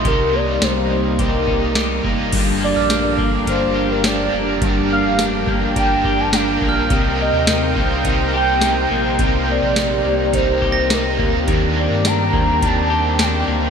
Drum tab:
CC |--------|x-------|--------|--------|
HH |x-x-x-x-|x-x-x-x-|x-x-x-x-|x-x-x-x-|
TB |--------|--x---x-|--x---x-|--x---x-|
SD |--o---o-|--o---o-|--o---o-|--o---o-|
BD |o---oo-o|o--oo---|o--ooo-o|o--oo---|

CC |--------|--------|
HH |x-x-x-x-|x-x-x-x-|
TB |--x---x-|--x---x-|
SD |--o---o-|--o---o-|
BD |o---oo-o|o--oo---|